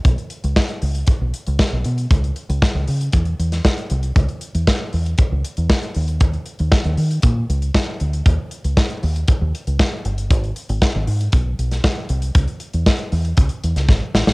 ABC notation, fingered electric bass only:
X:1
M:4/4
L:1/16
Q:1/4=117
K:C#dor
V:1 name="Fingered electric bass" clef=bass
B,,, z2 C,, z2 C,,2 z B,,, z C,, z B,,, B,,2 | C,,2 z C,, z C,, C,2 E,,2 E,,2 z2 ^B,,,2 | C,, z2 E,, z2 E,,2 z C,, z E,, z2 D,,2- | D,,2 z D,, z D,, D,2 A,,2 C,,2 z2 =D,,2 |
D,, z2 C,, z2 D,,2 z D,, z C,, z2 =G,,,2 | G,,,2 z G,,, z G,,, G,,2 B,,,2 B,,,2 z2 ^B,,,2 | C,, z2 E,, z2 E,,2 C,, z E,, C,, G,,, z =A,,, ^A,,, |]